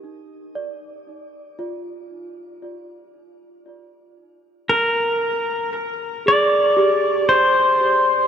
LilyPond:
<<
  \new Staff \with { instrumentName = "Pedal steel guitar" } { \time 4/4 \key bes \mixolydian \tempo 4 = 58 r1 | r8 bes'4 r8 d''4 c''4 | }
  \new Staff \with { instrumentName = "Celesta" } { \time 4/4 \key bes \mixolydian << { r8 d''2~ d''8 r4 | r2 aes'8 g'4. | } \\ { ees'4. f'2 r8 | r1 | } >> }
>>